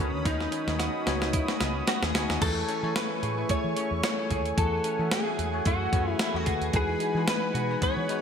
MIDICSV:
0, 0, Header, 1, 8, 480
1, 0, Start_track
1, 0, Tempo, 540541
1, 226, Time_signature, 4, 2, 24, 8
1, 7295, End_track
2, 0, Start_track
2, 0, Title_t, "Analog synth pad"
2, 0, Program_c, 0, 89
2, 0, Note_on_c, 0, 61, 82
2, 0, Note_on_c, 0, 83, 73
2, 0, Note_on_c, 0, 87, 88
2, 2111, Note_off_c, 0, 61, 0
2, 2122, Note_off_c, 0, 83, 0
2, 2122, Note_off_c, 0, 87, 0
2, 2140, Note_on_c, 0, 57, 82
2, 2141, Note_on_c, 0, 80, 75
2, 2145, Note_on_c, 0, 85, 89
2, 4044, Note_off_c, 0, 57, 0
2, 4044, Note_off_c, 0, 80, 0
2, 4046, Note_off_c, 0, 85, 0
2, 4053, Note_on_c, 0, 80, 80
2, 4055, Note_on_c, 0, 78, 73
2, 5961, Note_off_c, 0, 78, 0
2, 5980, Note_on_c, 0, 83, 89
2, 5984, Note_on_c, 0, 78, 78
2, 7295, Note_off_c, 0, 78, 0
2, 7295, Note_off_c, 0, 80, 0
2, 7295, Note_off_c, 0, 83, 0
2, 7295, End_track
3, 0, Start_track
3, 0, Title_t, "Clean electric guitar"
3, 0, Program_c, 1, 27
3, 0, Note_on_c, 1, 61, 88
3, 228, Note_off_c, 1, 61, 0
3, 232, Note_on_c, 1, 63, 85
3, 1633, Note_off_c, 1, 63, 0
3, 1672, Note_on_c, 1, 66, 76
3, 1802, Note_off_c, 1, 66, 0
3, 1802, Note_on_c, 1, 68, 74
3, 2144, Note_off_c, 1, 68, 0
3, 2147, Note_on_c, 1, 69, 87
3, 2625, Note_off_c, 1, 69, 0
3, 2628, Note_on_c, 1, 71, 80
3, 3108, Note_off_c, 1, 71, 0
3, 3112, Note_on_c, 1, 73, 91
3, 3579, Note_off_c, 1, 73, 0
3, 3589, Note_on_c, 1, 73, 89
3, 4067, Note_off_c, 1, 73, 0
3, 4070, Note_on_c, 1, 69, 87
3, 4547, Note_off_c, 1, 69, 0
3, 4551, Note_on_c, 1, 68, 81
3, 5033, Note_off_c, 1, 68, 0
3, 5037, Note_on_c, 1, 66, 88
3, 5418, Note_off_c, 1, 66, 0
3, 5418, Note_on_c, 1, 64, 88
3, 5511, Note_off_c, 1, 64, 0
3, 5515, Note_on_c, 1, 64, 86
3, 5650, Note_off_c, 1, 64, 0
3, 5650, Note_on_c, 1, 66, 86
3, 5999, Note_off_c, 1, 66, 0
3, 6002, Note_on_c, 1, 68, 96
3, 6472, Note_off_c, 1, 68, 0
3, 6475, Note_on_c, 1, 71, 91
3, 6952, Note_off_c, 1, 71, 0
3, 6956, Note_on_c, 1, 73, 102
3, 7295, Note_off_c, 1, 73, 0
3, 7295, End_track
4, 0, Start_track
4, 0, Title_t, "Tine electric piano"
4, 0, Program_c, 2, 4
4, 0, Note_on_c, 2, 51, 59
4, 0, Note_on_c, 2, 59, 73
4, 0, Note_on_c, 2, 63, 62
4, 0, Note_on_c, 2, 66, 66
4, 0, Note_on_c, 2, 73, 78
4, 174, Control_c, 2, 64, 127
4, 671, Note_off_c, 2, 51, 0
4, 757, Note_off_c, 2, 59, 0
4, 760, Note_off_c, 2, 63, 0
4, 760, Note_off_c, 2, 66, 0
4, 763, Note_off_c, 2, 73, 0
4, 942, Note_on_c, 2, 59, 85
4, 946, Note_on_c, 2, 63, 73
4, 949, Note_on_c, 2, 66, 76
4, 950, Note_on_c, 2, 73, 97
4, 1627, Note_off_c, 2, 59, 0
4, 1629, Note_off_c, 2, 63, 0
4, 1630, Note_off_c, 2, 66, 0
4, 1631, Note_off_c, 2, 73, 0
4, 1905, Note_on_c, 2, 59, 84
4, 1906, Note_on_c, 2, 63, 75
4, 1911, Note_on_c, 2, 66, 72
4, 1916, Note_on_c, 2, 73, 90
4, 2082, Note_off_c, 2, 59, 0
4, 2083, Note_off_c, 2, 63, 0
4, 2085, Note_off_c, 2, 66, 0
4, 2088, Note_off_c, 2, 73, 0
4, 2141, Note_on_c, 2, 57, 68
4, 2147, Note_on_c, 2, 64, 61
4, 2149, Note_on_c, 2, 52, 59
4, 2150, Note_on_c, 2, 68, 59
4, 2152, Note_on_c, 2, 73, 76
4, 2157, Control_c, 2, 64, 0
4, 2317, Control_c, 2, 64, 127
4, 2400, Note_off_c, 2, 57, 0
4, 2402, Note_off_c, 2, 64, 0
4, 2404, Note_off_c, 2, 68, 0
4, 2405, Note_off_c, 2, 73, 0
4, 2514, Note_on_c, 2, 57, 67
4, 2518, Note_on_c, 2, 64, 64
4, 2522, Note_on_c, 2, 68, 60
4, 2523, Note_on_c, 2, 73, 80
4, 2832, Note_off_c, 2, 52, 0
4, 2845, Note_off_c, 2, 57, 0
4, 2848, Note_off_c, 2, 64, 0
4, 2849, Note_off_c, 2, 68, 0
4, 2850, Note_off_c, 2, 73, 0
4, 2999, Note_on_c, 2, 57, 71
4, 3001, Note_on_c, 2, 64, 62
4, 3004, Note_on_c, 2, 68, 59
4, 3009, Note_on_c, 2, 76, 73
4, 3251, Note_off_c, 2, 57, 0
4, 3252, Note_off_c, 2, 64, 0
4, 3254, Note_off_c, 2, 68, 0
4, 3256, Note_off_c, 2, 76, 0
4, 3343, Note_on_c, 2, 57, 71
4, 3348, Note_on_c, 2, 64, 62
4, 3349, Note_on_c, 2, 68, 61
4, 3353, Note_on_c, 2, 73, 77
4, 3600, Note_off_c, 2, 57, 0
4, 3603, Note_off_c, 2, 64, 0
4, 3604, Note_off_c, 2, 68, 0
4, 3606, Note_off_c, 2, 73, 0
4, 3710, Note_on_c, 2, 57, 72
4, 3718, Note_on_c, 2, 64, 63
4, 3720, Note_on_c, 2, 68, 63
4, 3722, Note_on_c, 2, 73, 72
4, 3967, Note_off_c, 2, 57, 0
4, 3971, Note_off_c, 2, 64, 0
4, 3972, Note_off_c, 2, 68, 0
4, 3973, Note_off_c, 2, 73, 0
4, 4060, Note_on_c, 2, 57, 68
4, 4062, Note_on_c, 2, 66, 64
4, 4063, Note_on_c, 2, 52, 58
4, 4067, Note_on_c, 2, 68, 60
4, 4069, Note_on_c, 2, 73, 73
4, 4076, Control_c, 2, 64, 0
4, 4249, Control_c, 2, 64, 127
4, 4319, Note_off_c, 2, 57, 0
4, 4320, Note_off_c, 2, 66, 0
4, 4323, Note_off_c, 2, 68, 0
4, 4323, Note_off_c, 2, 73, 0
4, 4438, Note_on_c, 2, 57, 69
4, 4439, Note_on_c, 2, 66, 66
4, 4442, Note_on_c, 2, 68, 63
4, 4445, Note_on_c, 2, 76, 79
4, 4749, Note_off_c, 2, 52, 0
4, 4767, Note_off_c, 2, 57, 0
4, 4768, Note_off_c, 2, 66, 0
4, 4769, Note_off_c, 2, 68, 0
4, 4771, Note_off_c, 2, 76, 0
4, 4912, Note_on_c, 2, 57, 71
4, 4915, Note_on_c, 2, 66, 65
4, 4918, Note_on_c, 2, 68, 64
4, 4924, Note_on_c, 2, 73, 76
4, 5168, Note_off_c, 2, 57, 0
4, 5170, Note_off_c, 2, 66, 0
4, 5171, Note_off_c, 2, 68, 0
4, 5174, Note_off_c, 2, 73, 0
4, 5264, Note_on_c, 2, 57, 69
4, 5267, Note_on_c, 2, 66, 69
4, 5270, Note_on_c, 2, 68, 66
4, 5276, Note_on_c, 2, 71, 75
4, 5521, Note_off_c, 2, 57, 0
4, 5523, Note_off_c, 2, 66, 0
4, 5524, Note_off_c, 2, 68, 0
4, 5527, Note_off_c, 2, 71, 0
4, 5633, Note_on_c, 2, 57, 70
4, 5638, Note_on_c, 2, 66, 68
4, 5642, Note_on_c, 2, 68, 66
4, 5644, Note_on_c, 2, 71, 79
4, 5889, Note_off_c, 2, 57, 0
4, 5891, Note_off_c, 2, 66, 0
4, 5893, Note_off_c, 2, 68, 0
4, 5894, Note_off_c, 2, 71, 0
4, 5987, Note_on_c, 2, 56, 72
4, 5990, Note_on_c, 2, 63, 64
4, 5993, Note_on_c, 2, 52, 58
4, 5994, Note_on_c, 2, 66, 67
4, 5995, Note_on_c, 2, 71, 81
4, 5996, Control_c, 2, 64, 0
4, 6159, Control_c, 2, 64, 127
4, 6242, Note_off_c, 2, 56, 0
4, 6244, Note_off_c, 2, 63, 0
4, 6246, Note_off_c, 2, 66, 0
4, 6247, Note_off_c, 2, 71, 0
4, 6359, Note_on_c, 2, 56, 74
4, 6365, Note_on_c, 2, 63, 67
4, 6366, Note_on_c, 2, 66, 65
4, 6372, Note_on_c, 2, 71, 80
4, 6674, Note_off_c, 2, 52, 0
4, 6688, Note_off_c, 2, 56, 0
4, 6691, Note_off_c, 2, 63, 0
4, 6691, Note_off_c, 2, 66, 0
4, 6694, Note_off_c, 2, 71, 0
4, 6839, Note_on_c, 2, 56, 66
4, 6842, Note_on_c, 2, 63, 66
4, 6844, Note_on_c, 2, 66, 64
4, 6847, Note_on_c, 2, 71, 78
4, 7092, Note_off_c, 2, 56, 0
4, 7093, Note_off_c, 2, 63, 0
4, 7094, Note_off_c, 2, 66, 0
4, 7095, Note_off_c, 2, 71, 0
4, 7186, Note_on_c, 2, 56, 74
4, 7189, Note_on_c, 2, 63, 71
4, 7190, Note_on_c, 2, 66, 68
4, 7195, Note_on_c, 2, 71, 85
4, 7295, Note_off_c, 2, 56, 0
4, 7295, Note_off_c, 2, 63, 0
4, 7295, Note_off_c, 2, 66, 0
4, 7295, Note_off_c, 2, 71, 0
4, 7295, End_track
5, 0, Start_track
5, 0, Title_t, "Clean electric guitar"
5, 0, Program_c, 3, 27
5, 0, Note_on_c, 3, 51, 78
5, 0, Note_on_c, 3, 61, 59
5, 0, Note_on_c, 3, 66, 69
5, 211, Note_off_c, 3, 51, 0
5, 222, Note_on_c, 3, 51, 81
5, 248, Note_off_c, 3, 61, 0
5, 461, Note_on_c, 3, 61, 55
5, 696, Note_off_c, 3, 66, 0
5, 699, Note_on_c, 3, 66, 67
5, 937, Note_off_c, 3, 61, 0
5, 940, Note_on_c, 3, 61, 55
5, 1178, Note_off_c, 3, 66, 0
5, 1182, Note_on_c, 3, 64, 62
5, 1316, Note_off_c, 3, 64, 0
5, 1316, Note_on_c, 3, 66, 59
5, 1416, Note_off_c, 3, 61, 0
5, 1419, Note_on_c, 3, 61, 56
5, 1663, Note_on_c, 3, 59, 54
5, 1892, Note_off_c, 3, 66, 0
5, 1903, Note_on_c, 3, 66, 61
5, 2140, Note_off_c, 3, 51, 0
5, 2143, Note_on_c, 3, 52, 79
5, 2197, Note_off_c, 3, 59, 0
5, 2197, Note_off_c, 3, 66, 0
5, 2383, Note_off_c, 3, 61, 0
5, 2386, Note_on_c, 3, 61, 58
5, 2625, Note_on_c, 3, 57, 56
5, 2865, Note_on_c, 3, 68, 61
5, 3101, Note_off_c, 3, 57, 0
5, 3105, Note_on_c, 3, 57, 68
5, 3344, Note_off_c, 3, 61, 0
5, 3347, Note_on_c, 3, 61, 60
5, 3579, Note_off_c, 3, 57, 0
5, 3583, Note_on_c, 3, 57, 57
5, 3818, Note_off_c, 3, 68, 0
5, 3821, Note_on_c, 3, 68, 66
5, 4050, Note_off_c, 3, 52, 0
5, 4061, Note_on_c, 3, 52, 82
5, 4297, Note_off_c, 3, 61, 0
5, 4300, Note_on_c, 3, 61, 58
5, 4537, Note_off_c, 3, 57, 0
5, 4540, Note_on_c, 3, 57, 62
5, 4567, Note_off_c, 3, 68, 0
5, 4780, Note_on_c, 3, 68, 61
5, 5009, Note_off_c, 3, 57, 0
5, 5020, Note_on_c, 3, 57, 66
5, 5248, Note_off_c, 3, 61, 0
5, 5259, Note_on_c, 3, 61, 60
5, 5488, Note_off_c, 3, 57, 0
5, 5498, Note_on_c, 3, 57, 56
5, 5730, Note_off_c, 3, 68, 0
5, 5733, Note_on_c, 3, 68, 64
5, 5965, Note_off_c, 3, 52, 0
5, 5975, Note_on_c, 3, 52, 83
5, 6035, Note_off_c, 3, 57, 0
5, 6035, Note_off_c, 3, 61, 0
5, 6217, Note_on_c, 3, 63, 59
5, 6456, Note_on_c, 3, 59, 61
5, 6693, Note_off_c, 3, 68, 0
5, 6697, Note_on_c, 3, 66, 64
5, 6934, Note_off_c, 3, 59, 0
5, 6937, Note_on_c, 3, 59, 70
5, 7173, Note_off_c, 3, 63, 0
5, 7177, Note_on_c, 3, 63, 61
5, 7295, Note_off_c, 3, 52, 0
5, 7295, Note_off_c, 3, 59, 0
5, 7295, Note_off_c, 3, 63, 0
5, 7295, Note_off_c, 3, 66, 0
5, 7295, End_track
6, 0, Start_track
6, 0, Title_t, "Fingered electric bass"
6, 0, Program_c, 4, 33
6, 116, Note_on_c, 4, 38, 81
6, 198, Note_off_c, 4, 38, 0
6, 224, Note_on_c, 4, 39, 93
6, 405, Note_off_c, 4, 39, 0
6, 597, Note_on_c, 4, 39, 87
6, 777, Note_off_c, 4, 39, 0
6, 947, Note_on_c, 4, 37, 75
6, 1226, Note_off_c, 4, 37, 0
6, 1429, Note_on_c, 4, 37, 90
6, 1608, Note_off_c, 4, 37, 0
6, 1797, Note_on_c, 4, 39, 88
6, 1878, Note_off_c, 4, 39, 0
6, 1910, Note_on_c, 4, 38, 76
6, 2007, Note_off_c, 4, 38, 0
6, 2038, Note_on_c, 4, 39, 81
6, 2119, Note_off_c, 4, 39, 0
6, 2146, Note_on_c, 4, 40, 94
6, 2326, Note_off_c, 4, 40, 0
6, 2514, Note_on_c, 4, 52, 93
6, 2596, Note_off_c, 4, 52, 0
6, 2866, Note_on_c, 4, 45, 91
6, 3046, Note_off_c, 4, 45, 0
6, 3233, Note_on_c, 4, 52, 97
6, 3316, Note_off_c, 4, 52, 0
6, 3472, Note_on_c, 4, 40, 85
6, 3555, Note_off_c, 4, 40, 0
6, 3825, Note_on_c, 4, 39, 78
6, 4005, Note_off_c, 4, 39, 0
6, 4063, Note_on_c, 4, 40, 97
6, 4244, Note_off_c, 4, 40, 0
6, 4432, Note_on_c, 4, 52, 96
6, 4515, Note_off_c, 4, 52, 0
6, 4783, Note_on_c, 4, 40, 90
6, 4964, Note_off_c, 4, 40, 0
6, 5024, Note_on_c, 4, 42, 91
6, 5205, Note_off_c, 4, 42, 0
6, 5262, Note_on_c, 4, 42, 93
6, 5444, Note_off_c, 4, 42, 0
6, 5631, Note_on_c, 4, 40, 82
6, 5714, Note_off_c, 4, 40, 0
6, 5741, Note_on_c, 4, 38, 78
6, 5842, Note_off_c, 4, 38, 0
6, 5867, Note_on_c, 4, 39, 80
6, 5952, Note_off_c, 4, 39, 0
6, 5984, Note_on_c, 4, 40, 98
6, 6165, Note_off_c, 4, 40, 0
6, 6345, Note_on_c, 4, 52, 97
6, 6431, Note_off_c, 4, 52, 0
6, 6699, Note_on_c, 4, 47, 84
6, 6881, Note_off_c, 4, 47, 0
6, 7073, Note_on_c, 4, 52, 101
6, 7156, Note_off_c, 4, 52, 0
6, 7295, End_track
7, 0, Start_track
7, 0, Title_t, "Muted fingered electric bass strokes"
7, 3107, Note_on_c, 9, 29, 44
7, 3196, Note_off_c, 9, 29, 0
7, 6941, Note_on_c, 9, 29, 45
7, 7029, Note_off_c, 9, 29, 0
7, 7295, End_track
8, 0, Start_track
8, 0, Title_t, "Drums"
8, 226, Note_on_c, 9, 36, 109
8, 227, Note_on_c, 9, 38, 53
8, 227, Note_on_c, 9, 42, 93
8, 315, Note_off_c, 9, 36, 0
8, 316, Note_off_c, 9, 38, 0
8, 316, Note_off_c, 9, 42, 0
8, 360, Note_on_c, 9, 38, 44
8, 448, Note_off_c, 9, 38, 0
8, 463, Note_on_c, 9, 42, 71
8, 552, Note_off_c, 9, 42, 0
8, 601, Note_on_c, 9, 38, 52
8, 602, Note_on_c, 9, 42, 43
8, 690, Note_off_c, 9, 38, 0
8, 690, Note_off_c, 9, 42, 0
8, 706, Note_on_c, 9, 38, 65
8, 708, Note_on_c, 9, 42, 70
8, 795, Note_off_c, 9, 38, 0
8, 797, Note_off_c, 9, 42, 0
8, 949, Note_on_c, 9, 38, 70
8, 950, Note_on_c, 9, 42, 61
8, 1037, Note_off_c, 9, 38, 0
8, 1038, Note_off_c, 9, 42, 0
8, 1081, Note_on_c, 9, 38, 65
8, 1170, Note_off_c, 9, 38, 0
8, 1184, Note_on_c, 9, 42, 89
8, 1187, Note_on_c, 9, 36, 86
8, 1273, Note_off_c, 9, 42, 0
8, 1276, Note_off_c, 9, 36, 0
8, 1318, Note_on_c, 9, 38, 65
8, 1407, Note_off_c, 9, 38, 0
8, 1425, Note_on_c, 9, 38, 81
8, 1426, Note_on_c, 9, 42, 74
8, 1514, Note_off_c, 9, 38, 0
8, 1515, Note_off_c, 9, 42, 0
8, 1664, Note_on_c, 9, 42, 84
8, 1666, Note_on_c, 9, 38, 84
8, 1753, Note_off_c, 9, 42, 0
8, 1754, Note_off_c, 9, 38, 0
8, 1799, Note_on_c, 9, 38, 77
8, 1888, Note_off_c, 9, 38, 0
8, 1908, Note_on_c, 9, 42, 69
8, 1909, Note_on_c, 9, 38, 94
8, 1996, Note_off_c, 9, 42, 0
8, 1998, Note_off_c, 9, 38, 0
8, 2042, Note_on_c, 9, 38, 79
8, 2130, Note_off_c, 9, 38, 0
8, 2146, Note_on_c, 9, 36, 106
8, 2146, Note_on_c, 9, 42, 88
8, 2146, Note_on_c, 9, 49, 87
8, 2235, Note_off_c, 9, 36, 0
8, 2235, Note_off_c, 9, 42, 0
8, 2235, Note_off_c, 9, 49, 0
8, 2385, Note_on_c, 9, 42, 72
8, 2474, Note_off_c, 9, 42, 0
8, 2627, Note_on_c, 9, 38, 106
8, 2628, Note_on_c, 9, 42, 68
8, 2715, Note_off_c, 9, 38, 0
8, 2717, Note_off_c, 9, 42, 0
8, 2868, Note_on_c, 9, 42, 61
8, 2957, Note_off_c, 9, 42, 0
8, 3102, Note_on_c, 9, 42, 89
8, 3106, Note_on_c, 9, 36, 90
8, 3191, Note_off_c, 9, 42, 0
8, 3195, Note_off_c, 9, 36, 0
8, 3344, Note_on_c, 9, 42, 74
8, 3432, Note_off_c, 9, 42, 0
8, 3582, Note_on_c, 9, 42, 86
8, 3584, Note_on_c, 9, 38, 112
8, 3671, Note_off_c, 9, 42, 0
8, 3672, Note_off_c, 9, 38, 0
8, 3823, Note_on_c, 9, 42, 70
8, 3825, Note_on_c, 9, 36, 84
8, 3912, Note_off_c, 9, 42, 0
8, 3914, Note_off_c, 9, 36, 0
8, 3956, Note_on_c, 9, 42, 48
8, 4045, Note_off_c, 9, 42, 0
8, 4064, Note_on_c, 9, 36, 109
8, 4065, Note_on_c, 9, 42, 92
8, 4153, Note_off_c, 9, 36, 0
8, 4153, Note_off_c, 9, 42, 0
8, 4299, Note_on_c, 9, 42, 72
8, 4388, Note_off_c, 9, 42, 0
8, 4542, Note_on_c, 9, 38, 116
8, 4544, Note_on_c, 9, 42, 74
8, 4631, Note_off_c, 9, 38, 0
8, 4633, Note_off_c, 9, 42, 0
8, 4786, Note_on_c, 9, 42, 63
8, 4875, Note_off_c, 9, 42, 0
8, 5021, Note_on_c, 9, 42, 93
8, 5025, Note_on_c, 9, 36, 92
8, 5110, Note_off_c, 9, 42, 0
8, 5114, Note_off_c, 9, 36, 0
8, 5263, Note_on_c, 9, 36, 91
8, 5264, Note_on_c, 9, 42, 71
8, 5352, Note_off_c, 9, 36, 0
8, 5353, Note_off_c, 9, 42, 0
8, 5499, Note_on_c, 9, 42, 85
8, 5501, Note_on_c, 9, 38, 110
8, 5588, Note_off_c, 9, 42, 0
8, 5590, Note_off_c, 9, 38, 0
8, 5738, Note_on_c, 9, 42, 72
8, 5743, Note_on_c, 9, 36, 86
8, 5827, Note_off_c, 9, 42, 0
8, 5832, Note_off_c, 9, 36, 0
8, 5875, Note_on_c, 9, 42, 48
8, 5964, Note_off_c, 9, 42, 0
8, 5980, Note_on_c, 9, 42, 94
8, 5983, Note_on_c, 9, 36, 116
8, 6069, Note_off_c, 9, 42, 0
8, 6071, Note_off_c, 9, 36, 0
8, 6218, Note_on_c, 9, 42, 69
8, 6307, Note_off_c, 9, 42, 0
8, 6461, Note_on_c, 9, 38, 113
8, 6462, Note_on_c, 9, 42, 77
8, 6550, Note_off_c, 9, 38, 0
8, 6551, Note_off_c, 9, 42, 0
8, 6705, Note_on_c, 9, 42, 62
8, 6794, Note_off_c, 9, 42, 0
8, 6943, Note_on_c, 9, 42, 91
8, 6944, Note_on_c, 9, 36, 92
8, 7032, Note_off_c, 9, 42, 0
8, 7033, Note_off_c, 9, 36, 0
8, 7186, Note_on_c, 9, 42, 73
8, 7274, Note_off_c, 9, 42, 0
8, 7295, End_track
0, 0, End_of_file